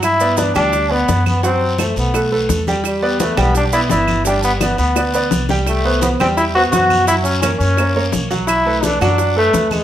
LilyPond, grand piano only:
\new Staff \with { instrumentName = "Grand piano" } { \time 4/4 \key g \major \tempo 4 = 170 r8 <b b' d''>8 <b b' d''>8 <g g' g''>4 <b b' d''>8 <b b' d''>4 | <fis fis' fis''>4 <a a' c''>4 <a a' b'>8 <a a' b'>4 <g g' g''>8~ | <g g' g''>8 <b b' d''>8 <b b' d''>8 <g g' g''>4 <b b' d''>8 <b b' d''>4 | <g g' g''>4 <b b' d''>4 <b b' d''>8 <b b' d''>4 <g g' g''>8~ |
<g g' g''>8 <b b' c''>8 <b b' c''>8 <g g' g''>4 <b b' c''>8 <b, b' c''>4 | <fis fis' fis''>4 <ais ais' cis''>4 <ais ais' cis''>8 <ais ais' cis''>4 <fis fis' fis''>8~ | <fis fis' fis''>8 <a a' b'>8 <a a' b'>8 <fis fis' fis''>4 <a a' b'>8 <a a' b'>4 | }